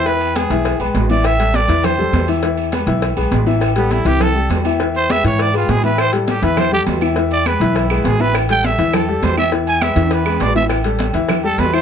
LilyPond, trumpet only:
\new Staff \with { instrumentName = "Trumpet" } { \time 4/4 \key a \minor \tempo 4 = 203 b'4 gis'4. r4 d''8 | e''4 d''4 c''4. r8 | r1 | r8 b8 e'8 g'8 a'4 r4 |
r8 c''8 e''8 cis''8 d''8 f'8 gis'8 b'8 | c''8 e'8 g'8 b'8 c''8 g'8 r4 | r8 d''8 b'4 e'4 gis'8 b'8 | r8 g''8 e''4 a'4 c''8 e''8 |
r8 gis''8 e''4 b'4 d''8 e''8 | r2 r8 a'8 b'8 c''8 | }